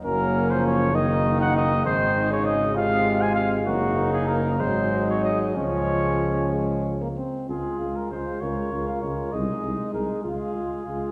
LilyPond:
<<
  \new Staff \with { instrumentName = "Trumpet" } { \time 6/8 \key des \major \tempo 4. = 66 bes'8. c''16 des''8 ees''8. ges''16 ees''8 | c''8. des''16 ees''8 f''8. aes''16 f''8 | ges'8. aes'16 bes'8 c''8. des''16 ees''8 | des''4. r4. |
aes'8. bes'16 c''8 des''8. f''16 des''8 | ees''4 bes'8 aes'4. | }
  \new Staff \with { instrumentName = "Flugelhorn" } { \time 6/8 \key des \major des'4. ees'4. | ees'4. f'4. | ees'4. ees'4. | des'2~ des'8 r8 |
f'8 f'8 f'8 f'8 f'8 f'8 | ees'8 ees'8 ees'8 f'8 f'8 f'8 | }
  \new Staff \with { instrumentName = "French horn" } { \time 6/8 \key des \major bes4. bes4. | aes4. aes4. | bes4. aes4. | aes4. aes8. bes16 c'8 |
f'4. bes'4. | aes'4. f'4. | }
  \new Staff \with { instrumentName = "Trombone" } { \clef bass \time 6/8 \key des \major ges8. f8. ees4. | ees8. des8. c4. | des4. ges4. | f2~ f8 r8 |
aes8 aes8 aes8 aes8 aes8 aes8 | aes8 aes8 aes8 aes8 aes8 aes8 | }
  \new Staff \with { instrumentName = "Tuba" } { \clef bass \time 6/8 \key des \major ges,,2. | aes,,2. | ges,,4. aes,,4. | des,2~ des,8 r8 |
des,8 des,8 des,8 des,8 des,8 des,8 | c,8 c,8 c,8 des,8 des,8 des,8 | }
>>